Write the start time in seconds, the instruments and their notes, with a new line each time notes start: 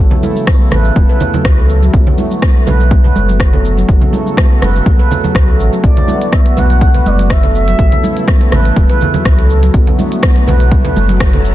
Already playing: analog synth pad A3
0.00 analog synth pad C#3 E3 E4 A4
0.11 low conga
0.23 handpan E4, high conga, cabasa
0.37 cabasa
0.47 handpan B3, kick, cross-stick, high conga, cabasa
0.71 sub bass A1, handpan B4, cross-stick, high conga, low conga, cabasa
0.85 cabasa
0.96 sub bass E1, handpan B3, kick, high conga, cabasa
1.09 handpan B4
1.21 low conga, cabasa
1.34 handpan F#3, low conga, cabasa
1.45 sub bass C#2, kick, cross-stick, cabasa
1.58 handpan A4
1.70 cabasa
1.82 handpan F#3, cabasa
1.93 sub bass B1, analog synth pad D3 F#3 A3 B3 F#4, kick, cabasa
2.07 low conga
2.18 handpan E4, high conga, cabasa
2.31 cabasa
2.42 handpan B3, kick, cross-stick, high conga, cabasa
2.66 sub bass B1, handpan B4, high conga, low conga, cabasa
2.80 cabasa
2.91 handpan B3, kick, high conga, cabasa
3.04 handpan B4, low conga
3.15 sub bass F#1, high conga, cabasa
3.29 handpan F#3, cabasa
3.40 kick, cross-stick, cabasa
3.53 handpan A4, low conga
3.65 cabasa
3.77 handpan F#3, cabasa
3.88 sub bass F#1, analog synth pad C#3 A3 A4, handpan B3, kick, cabasa
4.01 low conga
4.13 handpan E4, high conga, cabasa
4.27 cabasa
4.37 handpan B3, kick, cross-stick, high conga, cabasa
4.62 sub bass F#1, handpan B4, cross-stick, high conga, low conga, cabasa
4.76 cabasa
4.86 sub bass C#2, handpan B3, kick, high conga, cabasa
4.99 handpan B4
5.11 low conga, cabasa
5.24 handpan F#3, low conga, cabasa
5.35 sub bass C#2, kick, cross-stick, cabasa
5.48 handpan A4
5.59 sub bass A1, cabasa
5.73 handpan F#3, cabasa
5.84 sub bass B1, analog synth pad D3 B3 F#4, handpan B3, analog synth lead D5, kick, closed hi-hat, cabasa
5.97 closed hi-hat, low conga
6.08 handpan E4, high conga, cabasa
6.22 closed hi-hat, cabasa
6.32 handpan B3, analog synth lead E5, kick, cross-stick, closed hi-hat, high conga, cabasa
6.46 closed hi-hat
6.57 sub bass B1, handpan B4, analog synth lead F#5, high conga, low conga, cabasa
6.70 closed hi-hat, cabasa
6.81 handpan B3, kick, closed hi-hat, high conga, cabasa
6.94 handpan B4, closed hi-hat, low conga
7.05 sub bass F#1, analog synth lead D5, high conga, cabasa
7.19 handpan F#3, closed hi-hat, cabasa
7.30 analog synth lead E5, kick, cross-stick, closed hi-hat, cabasa
7.43 handpan A4, closed hi-hat, low conga
7.55 analog synth lead E5, cabasa
7.68 handpan F#3, closed hi-hat, cabasa
7.79 sub bass A1, analog synth pad C#3 E3 A3 E4 A4, handpan B3, kick, closed hi-hat, cabasa
7.92 closed hi-hat, low conga
8.04 handpan E4, high conga, cabasa
8.17 closed hi-hat, cabasa
8.28 kick, cross-stick, closed hi-hat, high conga, cabasa
8.41 closed hi-hat
8.52 sub bass A1, handpan B4, cross-stick, high conga, low conga, cabasa
8.65 closed hi-hat, cabasa
8.76 sub bass E1, handpan B3, kick, closed hi-hat, high conga, cabasa
8.90 handpan B4, closed hi-hat
9.01 low conga, cabasa
9.14 handpan F#3, closed hi-hat, low conga, cabasa
9.25 sub bass C#2, kick, cross-stick, closed hi-hat, cabasa
9.38 handpan A4, closed hi-hat
9.50 cabasa
9.63 handpan F#3, closed hi-hat, cabasa
9.74 sub bass B1, analog synth pad D3 F#3 A3 B3 F#4, handpan B3, kick, closed hi-hat, riser, cabasa
9.87 closed hi-hat, low conga
9.99 handpan E4, high conga, cabasa
10.12 closed hi-hat, cabasa
10.23 handpan B3, kick, cross-stick, closed hi-hat, high conga, cabasa
10.36 closed hi-hat
10.47 sub bass B1, handpan B4, high conga, low conga, cabasa
10.60 closed hi-hat, cabasa
10.71 handpan B3, kick, closed hi-hat, high conga, cabasa
10.84 handpan B4, closed hi-hat, low conga
10.96 sub bass F#1, high conga, cabasa
11.09 handpan F#3, closed hi-hat, cabasa
11.20 kick, cross-stick, closed hi-hat, cabasa
11.33 handpan A4, closed hi-hat, low conga
11.45 cabasa